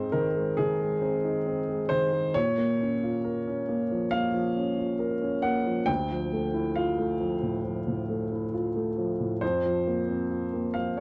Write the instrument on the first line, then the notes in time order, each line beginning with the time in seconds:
upright piano
Already playing: G#2 G#3 C4 D#4 C5
0.12 D#3 A#4
0.36 G#3
0.57 D#3 G#4
0.81 G#3
1.02 C4
1.24 D#4
1.46 C4
1.69 G#3
1.89 D#3 C5
2.13 G#3
2.34 A#2 C#5
2.57 A#3
2.81 C#4
3.03 F4
3.24 A#4
3.47 C#4
3.69 A#3
3.91 F3
4.11 A#3 F5
4.34 F3
4.57 C#4
4.78 F4
4.99 A#4
5.22 C#4
5.42 A#3 F#5
5.66 F3
5.86 D2 G5
6.11 F3
6.33 A3
6.54 E4
6.76 F4 F5
6.98 A3
7.20 F3
7.42 A2
7.64 F3
7.88 A2
8.09 A3
8.32 E4
8.53 F4
8.76 A3
8.98 F3
9.20 A2
9.41 F2 C5
9.65 F3
9.87 A#3
10.09 C4
10.30 F4
10.53 A#3
10.74 F3 F5